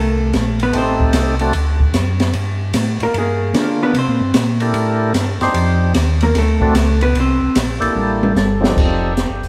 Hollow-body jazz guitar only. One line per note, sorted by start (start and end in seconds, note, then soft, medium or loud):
0.00 0.58 A3 medium
0.00 0.58 A4 medium
0.63 0.75 B3 medium
0.63 0.75 B4 medium
0.78 1.14 C4 medium
0.78 1.13 C5 loud
3.03 3.15 A#3 medium
3.03 3.15 A#4 loud
3.18 3.79 A#3 medium
3.18 3.79 G#4 medium
3.83 3.96 B3 medium
3.83 3.95 B4 medium
3.98 4.34 C4 medium
3.98 4.34 C5 medium
6.23 6.36 A#3 medium
6.23 6.36 A#4 loud
6.38 7.00 A3 medium
6.38 6.99 A4 medium
7.03 7.16 B3 medium
7.03 7.16 B4 loud
7.20 7.55 C4 medium
7.20 7.55 C5 medium